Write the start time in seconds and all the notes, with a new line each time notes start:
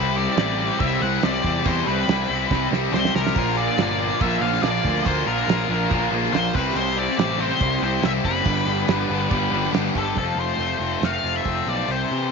Already playing: C2 C3 E3 G3 C4 E4 G4 B4
0.16 C3 E3 G3 C4 E4 D5
0.36 A1 C3 E3 G3 C4 E4, snare, crash
0.57 C3 E3 G3 C4 E4
0.80 C2 C3 E3 G3 C4 E4 E5, kick, crash
1.01 C2 C3 E3 G3 C4 E4 F#5
1.23 C2 C3 E3 G3 C4 E4 D5, snare, crash
1.44 E2 C3 E3 G3 C4 E4, kick, snare
1.65 E2 C3 E3 G3 C4 E4 C5, kick, crash
1.87 C2 C3 E3 G3 C4 E4 B4
2.08 C2 C3 E3 G3 C4 E4, snare, crash
2.29 C2 C3 E3 G3 C4 E4
2.50 C2 C3 E3 G3 C4 E4, kick, snare
2.71 C2 C3 E3 G3 C4 E4, snare
2.92 C2 C3 E3 G3 C4 E4 C5, snare
3.05 snare
3.15 C2 C3 E3 G3 C4 E4 A#4, snare
3.27 snare
3.35 A#1 A#2 D3 F3 A#3 D4 F4 A#4, kick, crash
3.57 A#2 D3 F3 A#3 D4 F4 D5
3.78 G1 A#2 D3 F3 A#3 D4 F4, snare, crash
4.00 A#2 D3 F3 A#3 D4 F4
4.21 A#1 A#2 D3 F3 A#3 D4 F4 E5, kick, crash
4.41 A#1 A#2 D3 F3 A#3 D4 F4 F5
4.53 snare
4.62 A#1 A#2 D3 F3 A#3 D4 F4 D5, snare, crash
4.84 D2 A#2 D3 F3 A#3 D4 F4, kick, snare
5.05 D2 A#2 D3 F3 A#3 D4 F4 C5, kick, crash
5.26 A#1 A#2 D3 F3 A#3 D4 F4 A#4
5.48 A#1 A#2 D3 F3 A#3 D4 F4, snare, crash
5.69 A#1 A#2 D3 F3 A#3 D4 F4
5.90 A#1 A#2 D3 F3 A#3 D4 F4, kick, crash
6.11 A#1 A#2 D3 F3 A#3 D4 F4
6.24 snare
6.33 A#1 A#2 D3 F3 A#3 D4 F4 C5, snare, crash
6.53 C2 C3 E3 G3 C4 E4 G4 B4 C5, kick, snare
6.75 C2 C3 E3 G3 C4 E4 C5, crash
6.97 C3 E3 G3 C4 E4 D5
7.18 A1 C3 E3 G3 C4 E4, snare, crash
7.39 C3 E3 G3 C4 E4 C5
7.60 C2 C3 E3 G3 C4 E4, kick, crash
7.82 C2 C3 E3 G3 C4 E4 C5
8.02 C2 C3 E3 G3 C4 E4 E5, snare, crash
8.25 F#1 C3 E3 G3 C4 E4 B4, kick, snare
8.45 G1 G2 D3 G3 B3 D4 G4 B4, kick, crash
8.66 G1 G2 D3 G3 B3 D4 G4
8.88 G1 G2 D3 G3 B3 D4 G4, snare, crash
9.09 G1 G2 D3 G3 B3 D4 G4
9.31 G1 G2 D3 G3 B3 D4 G4, kick, crash
9.52 G1 G2 D3 G3 B3 D4 G4
9.64 snare
9.73 G1 G2 D3 G3 B3 D4 G4, snare, crash
9.95 G1 G2 D3 G3 B3 D4 G4 A4, kick, snare
10.16 F1 F2 F3 A4, kick, open hi-hat
10.36 F1 F3 A3 C5, open hi-hat
10.59 F1 F3 A3, open hi-hat
10.80 F1 A3 C4, open hi-hat
11.01 F1 A3 C4 F5, snare, open hi-hat
11.23 F1 F3 F4, open hi-hat
11.37 E5
11.45 F1 A3 C4, kick, open hi-hat
11.67 B1 F3 F4 D5, open hi-hat
11.88 C2 C3 C5, open hi-hat
12.10 C3 E3, open hi-hat